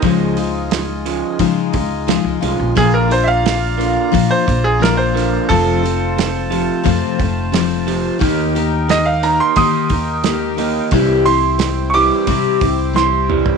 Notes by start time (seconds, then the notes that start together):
Already playing: C5 D#5
0.02 C#2 C#3 F3 G#3 D#4 F4 G#5, kick, open hi-hat
0.37 C#3 F3 G#3 D#4 F4, open hi-hat
0.71 C#3 F3, snare, open hi-hat
1.06 C#3 F3 G#3, open hi-hat
1.39 C#3 F3 G#3 D#4 F4, kick, open hi-hat
1.73 C#2 C#3 F3 G#3 D#4 F4, kick, open hi-hat
2.07 C#3 F3 G#3 D#4 F4, snare, open hi-hat
2.24 C#2
2.41 C2 C#3 F3 G#3 D#4 F4, open hi-hat
2.59 A#1
2.75 A#1 A#2 D3 F3 A#3 D4 F4 G#4 D5 A#5, kick, open hi-hat
2.94 A#4
3.10 A#2 D3 A#3 D4 F4 C5, open hi-hat
3.23 E5
3.28 F5
3.43 A#2 D3, snare, open hi-hat
3.78 A#2 D3 A#3 D4 F4, open hi-hat
4.12 A#2 D3 F3 A#3 D4 F4, kick, open hi-hat
4.31 C5
4.47 A#1 A#2 D3 A#3 D4 F4, kick, open hi-hat
4.64 G#4
4.80 A#2 D3 F3 A#3 D4 F4 A#4, snare, open hi-hat
4.97 C5
5.14 A#2 D3 A#3, snare, open hi-hat
5.47 F1 F2 C3 F3 A3 C4 F4 A4 C5 A5, kick, open hi-hat
5.83 F2 C3 F3 A3 C4 F4, open hi-hat
6.17 F2 C3, snare, open hi-hat
6.50 F2 C3 F3 A3 C4 F4, open hi-hat
6.83 F2 C3 F3 A3 C4 F4, kick, open hi-hat
7.18 F1 F2 C3 F3 A3 C4 F4, kick, open hi-hat
7.52 F2 C3 F3 A3 C4 F4, snare, open hi-hat
7.87 F2 C3 F3, open hi-hat
8.19 D#2 D#3 A#3 D#4 G4 A#4 G5, kick, open hi-hat
8.55 D#3 A#3 D#4 G4, open hi-hat
8.89 D#3 A#3 D#5, snare, open hi-hat
9.06 F5
9.23 D#3 A#3 D#4 A#5, open hi-hat
9.40 C6
9.56 D#3 A#3 D#4 G4 C6 D#6, kick, open hi-hat
9.90 D#2 D#3 A#3 D#4 G4, kick, open hi-hat
10.24 D#3 A#3 D#4 G4, snare, open hi-hat
10.57 D#3 A#3 D#4 G4, open hi-hat
10.91 C2 C3 E3 G3 C4 E4 G4 C5, kick, open hi-hat
11.25 C3 E3 C4 E4 G4 C6, open hi-hat
11.59 C3 E3, snare, open hi-hat
11.90 G4 C#6, open hi-hat
11.94 C3 E3 G3 C4 E4 D6
12.27 C3 E3 G3 C4 E4 G4, kick, open hi-hat
12.61 C2 C3 E3 C4 E4 G4, kick, open hi-hat
12.93 C3 E3 G3 C4 E4 G4 C6, snare
13.29 C3 E3 G3, mid tom
13.46 floor tom